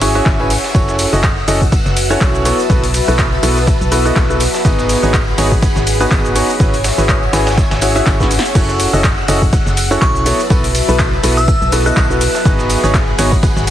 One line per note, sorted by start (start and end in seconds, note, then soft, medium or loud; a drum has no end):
0.00 0.21 G#1 loud
0.00 0.13 C#4 medium
0.00 0.13 E4 medium
0.00 0.13 F#4 medium
0.00 0.13 G#4 medium
0.00 1.38 C#5 medium
0.00 0.13 C#5 medium
0.00 0.73 E5 medium
0.00 1.44 F#5 medium
0.00 0.73 G#5 medium
0.00 1.44 G#5 medium
0.00 0.73 C#6 medium
0.00 open hi-hat loud
0.00 ride medium
0.00 tambourine medium
0.15 0.36 C#4 medium
0.15 0.36 E4 medium
0.15 0.36 F#4 medium
0.15 0.36 G#4 medium
0.15 0.36 E5 loud
0.15 tambourine soft
0.26 0.57 G#1 loud
0.26 kick loud
0.26 snare loud
0.26 clap loud
0.26 ride medium
0.26 tambourine soft
0.40 0.50 C#4 medium
0.40 0.50 E4 medium
0.40 0.50 F#4 medium
0.40 0.50 G#4 medium
0.40 0.50 B4 medium
0.40 tambourine soft
0.50 open hi-hat loud
0.50 ride medium
0.50 tambourine medium
0.64 snare medium
0.64 tambourine soft
0.75 1.06 F#1 medium
0.75 1.10 C#4 medium
0.75 1.10 E4 medium
0.75 5.44 F#4 medium
0.75 1.10 F#4 medium
0.75 1.10 A4 medium
0.75 1.10 C#5 medium
0.75 2.44 F#5 medium
0.75 4.61 E6 medium
0.75 2.44 F#6 medium
0.75 kick loud
0.75 ride medium
0.75 tambourine medium
0.75 cabasa soft
0.88 snare medium
0.88 tambourine soft
0.88 cabasa soft
0.93 5.44 B4 medium
0.99 snare soft
0.99 open hi-hat loud
0.99 ride medium
0.99 tambourine medium
0.99 cabasa medium
1.13 1.43 F#1 loud
1.13 1.23 C#4 medium
1.13 1.23 E4 medium
1.13 1.23 F#4 medium
1.13 1.23 A4 medium
1.13 1.23 D#5 medium
1.13 4.65 E5 medium
1.13 tambourine soft
1.13 cabasa soft
1.23 kick loud
1.23 snare loud
1.23 clap loud
1.23 ride medium
1.23 tambourine soft
1.23 cabasa soft
1.38 tambourine soft
1.48 1.79 F#1 loud
1.48 1.61 C#4 medium
1.48 1.61 E4 medium
1.48 1.61 F#4 medium
1.48 1.61 A4 medium
1.48 1.61 D#5 loud
1.48 open hi-hat loud
1.48 ride medium
1.48 tambourine medium
1.48 cabasa medium
1.61 kick medium
1.61 tambourine soft
1.61 cabasa soft
1.72 kick loud
1.72 ride medium
1.72 tambourine medium
1.72 cabasa soft
1.86 2.16 F#1 loud
1.86 snare medium
1.86 tambourine soft
1.86 cabasa soft
1.97 open hi-hat loud
1.97 ride medium
1.97 tambourine medium
1.97 cabasa medium
2.10 2.43 C#4 medium
2.10 2.43 E4 medium
2.10 2.43 F#4 medium
2.10 2.43 A4 medium
2.10 2.43 C#5 loud
2.10 tambourine soft
2.10 cabasa soft
2.21 2.52 B1 medium
2.21 kick loud
2.21 snare loud
2.21 clap loud
2.21 ride medium
2.21 tambourine soft
2.21 cabasa soft
2.34 tambourine soft
2.34 cabasa soft
2.45 2.59 B3 medium
2.45 2.59 E4 medium
2.45 2.59 F#4 medium
2.45 2.59 A4 medium
2.45 4.63 B4 medium
2.45 2.59 C#5 medium
2.45 4.63 A5 medium
2.45 open hi-hat loud
2.45 ride medium
2.45 tambourine medium
2.45 cabasa medium
2.59 tambourine soft
2.59 cabasa soft
2.70 3.01 B1 medium
2.70 2.83 B3 medium
2.70 2.83 E4 medium
2.70 2.83 F#4 medium
2.70 2.83 A4 medium
2.70 2.83 B4 medium
2.70 kick loud
2.70 ride medium
2.70 tambourine soft
2.70 cabasa soft
2.84 open hi-hat medium
2.84 tambourine soft
2.84 cabasa soft
2.94 open hi-hat loud
2.94 ride medium
2.94 tambourine medium
2.94 cabasa medium
3.08 3.38 B1 loud
3.08 3.26 B3 medium
3.08 3.26 E4 medium
3.08 3.26 F#4 medium
3.08 3.26 A4 medium
3.08 3.26 B4 medium
3.08 tambourine soft
3.08 cabasa soft
3.18 kick loud
3.18 snare loud
3.18 clap loud
3.18 ride medium
3.18 tambourine soft
3.18 cabasa soft
3.32 tambourine soft
3.43 3.74 B1 loud
3.43 3.56 B3 medium
3.43 3.56 E4 medium
3.43 3.56 F#4 medium
3.43 3.56 A4 medium
3.43 3.56 B4 medium
3.43 open hi-hat loud
3.43 ride medium
3.43 tambourine loud
3.43 cabasa medium
3.57 snare soft
3.57 tambourine soft
3.57 cabasa soft
3.67 kick loud
3.67 ride medium
3.67 tambourine soft
3.67 cabasa soft
3.81 4.11 B1 loud
3.81 tambourine soft
3.81 cabasa soft
3.92 4.03 B3 medium
3.92 4.04 E4 medium
3.92 4.03 F#4 medium
3.92 4.03 A4 medium
3.92 4.03 B4 medium
3.92 open hi-hat loud
3.92 ride medium
3.92 tambourine medium
3.92 cabasa medium
4.05 4.24 B3 medium
4.05 4.24 E4 medium
4.05 4.24 F#4 medium
4.05 4.24 A4 medium
4.05 4.24 D#5 medium
4.05 tambourine soft
4.05 cabasa soft
4.16 4.48 B1 medium
4.16 kick loud
4.16 snare loud
4.16 clap loud
4.16 ride medium
4.16 tambourine medium
4.16 cabasa soft
4.30 4.40 B3 medium
4.30 4.40 E4 medium
4.30 4.40 F#4 medium
4.30 4.40 A4 medium
4.30 4.40 B4 medium
4.30 tambourine soft
4.30 cabasa soft
4.40 open hi-hat loud
4.40 ride medium
4.40 tambourine medium
4.40 cabasa medium
4.54 snare medium
4.54 tambourine soft
4.54 cabasa soft
4.65 4.96 G#1 loud
4.65 5.00 B3 medium
4.65 5.00 D#4 medium
4.65 5.00 F#4 medium
4.65 5.00 G#4 medium
4.65 6.58 G#4 medium
4.65 5.00 B4 medium
4.65 6.58 F#5 medium
4.65 9.24 G#5 medium
4.65 6.58 B5 medium
4.65 kick loud
4.65 ride medium
4.65 tambourine medium
4.65 cabasa soft
4.79 snare medium
4.79 tambourine soft
4.79 cabasa soft
4.83 9.24 C#5 medium
4.89 snare soft
4.89 open hi-hat loud
4.89 ride medium
4.89 tambourine medium
4.89 cabasa medium
5.03 5.33 G#1 loud
5.03 5.13 B3 medium
5.03 5.13 D#4 medium
5.03 5.13 F#4 medium
5.03 5.13 G#4 medium
5.03 5.13 C#5 medium
5.03 tambourine soft
5.03 cabasa soft
5.14 kick loud
5.14 snare loud
5.14 clap loud
5.14 ride medium
5.14 tambourine medium
5.14 cabasa soft
5.27 tambourine soft
5.38 5.69 G#1 loud
5.38 5.51 B3 medium
5.38 5.51 D#4 medium
5.38 5.51 F#4 medium
5.38 5.51 G#4 medium
5.38 5.51 C#5 loud
5.38 open hi-hat medium
5.38 ride medium
5.38 tambourine medium
5.38 cabasa medium
5.52 9.21 F#5 medium
5.52 kick medium
5.52 tambourine soft
5.52 cabasa soft
5.62 kick loud
5.62 ride medium
5.62 tambourine medium
5.62 cabasa soft
5.76 6.06 G#1 loud
5.76 snare medium
5.76 tambourine soft
5.76 cabasa soft
5.87 open hi-hat loud
5.87 ride medium
5.87 tambourine medium
5.87 cabasa medium
6.00 6.33 B3 medium
6.00 6.33 D#4 medium
6.00 6.33 F#4 medium
6.00 6.33 G#4 medium
6.00 6.33 B4 loud
6.00 tambourine soft
6.00 cabasa soft
6.11 6.43 G#1 medium
6.11 kick loud
6.11 snare loud
6.11 clap loud
6.11 ride medium
6.11 tambourine medium
6.11 cabasa soft
6.24 tambourine soft
6.24 cabasa soft
6.36 6.49 B3 medium
6.36 6.49 D#4 medium
6.36 6.49 F#4 medium
6.36 6.49 G#4 medium
6.36 6.49 C#5 loud
6.36 open hi-hat loud
6.36 ride medium
6.36 tambourine medium
6.36 cabasa medium
6.49 tambourine soft
6.49 cabasa soft
6.60 6.91 G#1 medium
6.60 6.73 C#4 medium
6.60 6.73 E4 medium
6.60 6.73 F#4 medium
6.60 6.73 G#4 medium
6.60 6.73 B4 medium
6.60 8.53 C#5 medium
6.60 8.53 E5 medium
6.60 8.53 G#5 medium
6.60 kick loud
6.60 ride medium
6.60 tambourine soft
6.60 cabasa soft
6.73 open hi-hat medium
6.73 tambourine soft
6.73 cabasa soft
6.84 snare loud
6.84 open hi-hat loud
6.84 ride medium
6.84 tambourine medium
6.84 cabasa medium
6.98 7.28 G#1 loud
6.98 7.16 C#4 medium
6.98 7.16 E4 medium
6.98 7.16 F#4 medium
6.98 7.16 G#4 medium
6.98 7.16 B4 medium
6.98 tambourine soft
6.98 cabasa soft
7.09 kick loud
7.09 clap loud
7.09 ride medium
7.09 tambourine medium
7.09 cabasa soft
7.23 tambourine soft
7.33 7.65 G#1 loud
7.33 7.46 C#4 medium
7.33 7.46 E4 medium
7.33 7.46 F#4 medium
7.33 7.46 G#4 medium
7.33 7.46 B4 loud
7.33 snare loud
7.33 open hi-hat loud
7.33 ride medium
7.33 tambourine medium
7.33 cabasa medium
7.47 snare loud
7.47 ride medium
7.47 tambourine soft
7.47 cabasa soft
7.58 kick loud
7.58 snare loud
7.58 ride medium
7.58 tambourine soft
7.58 cabasa soft
7.71 8.01 G#1 loud
7.71 snare loud
7.71 ride medium
7.71 tambourine soft
7.71 cabasa soft
7.81 7.94 C#4 medium
7.81 7.94 E4 medium
7.81 7.94 F#4 medium
7.81 7.94 G#4 medium
7.81 7.94 C#5 medium
7.81 open hi-hat loud
7.81 ride medium
7.81 tambourine medium
7.81 cabasa medium
7.96 8.17 C#4 loud
7.96 8.17 E4 medium
7.96 8.17 F#4 medium
7.96 8.17 G#4 medium
7.96 8.17 E5 loud
7.96 tambourine soft
7.96 cabasa soft
8.06 8.38 G#1 loud
8.06 kick loud
8.06 snare medium
8.06 snare loud
8.06 clap loud
8.06 ride medium
8.06 tambourine soft
8.06 cabasa soft
8.20 8.30 C#4 medium
8.20 8.30 E4 medium
8.20 8.30 F#4 medium
8.20 8.30 G#4 medium
8.20 8.30 B4 medium
8.20 kick medium
8.20 snare medium
8.20 tambourine soft
8.20 cabasa soft
8.31 open hi-hat loud
8.31 ride medium
8.31 tambourine medium
8.31 cabasa medium
8.39 snare medium
8.45 tambourine soft
8.45 cabasa soft
8.55 8.87 F#1 medium
8.55 8.90 C#4 medium
8.55 8.90 E4 medium
8.55 8.90 F#4 medium
8.55 13.24 F#4 medium
8.55 8.90 A4 medium
8.55 8.90 C#5 medium
8.55 10.24 F#5 medium
8.55 12.42 E6 medium
8.55 10.24 F#6 medium
8.55 kick loud
8.55 ride medium
8.55 tambourine medium
8.55 crash loud
8.55 cabasa soft
8.69 snare medium
8.69 tambourine soft
8.69 cabasa soft
8.80 snare soft
8.80 open hi-hat loud
8.80 ride medium
8.80 tambourine medium
8.80 cabasa medium
8.89 13.24 B4 medium
8.93 9.23 F#1 loud
8.93 9.04 C#4 medium
8.93 9.04 E4 medium
8.93 9.04 F#4 medium
8.93 9.04 A4 medium
8.93 9.04 D#5 medium
8.93 tambourine soft
8.93 cabasa soft
9.04 kick loud
9.04 snare loud
9.04 clap loud
9.04 ride medium
9.04 tambourine medium
9.04 cabasa soft
9.18 tambourine soft
9.28 9.60 F#1 loud
9.28 9.42 C#4 loud
9.28 9.42 E4 medium
9.28 9.42 F#4 medium
9.28 9.42 A4 medium
9.28 9.42 D#5 loud
9.28 open hi-hat loud
9.28 ride medium
9.28 tambourine medium
9.28 cabasa medium
9.33 12.46 E5 loud
9.42 kick medium
9.42 tambourine soft
9.42 cabasa soft
9.53 kick loud
9.53 ride medium
9.53 tambourine medium
9.53 cabasa soft
9.66 9.96 F#1 loud
9.66 snare medium
9.66 tambourine soft
9.66 cabasa soft
9.77 open hi-hat loud
9.77 ride medium
9.77 tambourine medium
9.77 cabasa medium
9.91 10.23 C#4 loud
9.91 10.23 E4 medium
9.91 10.23 F#4 medium
9.91 10.23 A4 medium
9.91 10.23 C#5 loud
9.91 tambourine soft
9.91 cabasa soft
10.02 10.33 B1 medium
10.02 10.32 C#6 medium
10.02 kick loud
10.02 snare loud
10.02 clap loud
10.02 ride medium
10.02 tambourine soft
10.02 cabasa soft
10.15 tambourine soft
10.15 cabasa soft
10.26 10.39 B3 medium
10.26 10.39 E4 medium
10.26 10.39 F#4 medium
10.26 10.39 A4 medium
10.26 12.43 B4 medium
10.26 10.39 C#5 loud
10.26 12.43 A5 medium
10.26 open hi-hat loud
10.26 ride medium
10.26 tambourine medium
10.26 cabasa medium
10.40 tambourine soft
10.40 cabasa soft
10.50 10.82 B1 medium
10.50 10.64 B3 medium
10.50 10.64 E4 medium
10.50 10.64 F#4 medium
10.50 10.64 A4 medium
10.50 10.64 B4 medium
10.50 kick loud
10.50 ride medium
10.50 tambourine medium
10.50 cabasa soft
10.64 open hi-hat medium
10.64 tambourine soft
10.64 cabasa soft
10.75 open hi-hat loud
10.75 ride medium
10.75 tambourine loud
10.75 cabasa medium
10.88 11.18 B1 loud
10.88 11.07 B3 medium
10.88 11.07 E4 medium
10.88 11.07 F#4 medium
10.88 11.07 A4 medium
10.88 11.07 B4 medium
10.88 tambourine soft
10.88 cabasa soft
10.99 kick loud
10.99 snare loud
10.99 clap loud
10.99 ride medium
10.99 tambourine soft
10.99 cabasa soft
11.13 tambourine soft
11.23 11.55 B1 loud
11.23 11.37 B3 medium
11.23 11.37 E4 medium
11.23 11.37 F#4 medium
11.23 11.37 A4 medium
11.23 11.37 B4 loud
11.23 open hi-hat loud
11.23 ride medium
11.23 tambourine loud
11.23 cabasa medium
11.37 11.46 E6 medium
11.37 snare soft
11.37 tambourine soft
11.37 cabasa soft
11.48 11.68 E6 medium
11.48 kick loud
11.48 ride medium
11.48 tambourine medium
11.48 cabasa soft
11.62 11.91 B1 loud
11.62 tambourine soft
11.62 cabasa soft
11.72 11.84 B3 medium
11.72 11.84 E4 medium
11.72 11.84 F#4 medium
11.72 11.84 A4 medium
11.72 11.84 B4 medium
11.72 open hi-hat loud
11.72 ride medium
11.72 tambourine loud
11.72 cabasa medium
11.86 12.04 B3 medium
11.86 12.04 E4 medium
11.86 12.04 F#4 medium
11.86 12.04 A4 medium
11.86 12.04 D#5 medium
11.86 12.51 F#6 medium
11.86 tambourine soft
11.86 cabasa soft
11.96 12.28 B1 medium
11.96 kick loud
11.96 snare loud
11.96 clap loud
11.96 ride medium
11.96 tambourine medium
11.96 cabasa soft
12.10 12.21 B3 medium
12.10 12.21 E4 medium
12.10 12.21 F#4 medium
12.10 12.21 A4 medium
12.10 12.21 B4 medium
12.10 tambourine soft
12.10 cabasa soft
12.21 open hi-hat loud
12.21 ride medium
12.21 tambourine medium
12.21 cabasa medium
12.34 snare medium
12.34 tambourine soft
12.34 cabasa soft
12.45 12.77 G#1 medium
12.45 12.80 B3 medium
12.45 12.80 D#4 medium
12.45 12.80 F#4 medium
12.45 12.80 G#4 medium
12.45 13.70 G#4 medium
12.45 12.80 B4 medium
12.45 13.70 F#5 medium
12.45 13.70 G#5 medium
12.45 13.70 B5 medium
12.45 kick loud
12.45 ride medium
12.45 tambourine medium
12.45 cabasa soft
12.59 snare medium
12.59 tambourine soft
12.59 cabasa soft
12.69 snare soft
12.69 open hi-hat loud
12.69 ride medium
12.69 tambourine loud
12.69 cabasa medium
12.82 13.13 G#1 loud
12.82 12.94 B3 medium
12.82 12.94 D#4 medium
12.82 12.94 F#4 medium
12.82 12.94 G#4 medium
12.82 13.70 C#5 medium
12.82 12.94 C#5 loud
12.82 tambourine soft
12.82 cabasa soft
12.94 kick loud
12.94 snare loud
12.94 clap loud
12.94 ride medium
12.94 tambourine medium
12.94 cabasa soft
13.07 tambourine soft
13.18 13.50 G#1 loud
13.18 13.32 B3 medium
13.18 13.32 D#4 medium
13.18 13.32 F#4 medium
13.18 13.32 G#4 medium
13.18 13.32 C#5 loud
13.18 open hi-hat loud
13.18 ride medium
13.18 tambourine loud
13.18 cabasa medium
13.30 13.70 F#5 medium
13.30 kick medium
13.30 tambourine soft
13.30 cabasa soft
13.43 kick loud
13.43 ride medium
13.43 tambourine medium
13.43 cabasa soft
13.56 13.70 G#1 loud
13.56 snare medium
13.56 tambourine soft
13.56 cabasa soft